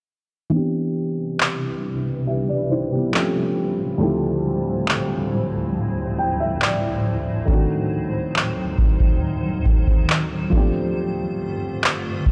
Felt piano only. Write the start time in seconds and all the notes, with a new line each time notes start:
0.50 E3 B3 C4
0.55 D4 G4
2.27 G4 E5
2.49 D5
2.71 E4 C5
2.92 B3 G4
3.12 F3 A3 C4 C#4 G4
3.98 D2 F3 A3
4.02 C4 E4 G4
6.18 G5
6.40 E5
6.62 D5
7.46 D#3 A3 C4
7.51 D4 F#4
10.50 F3 A3 B3
10.55 D4 G4
10.60 C4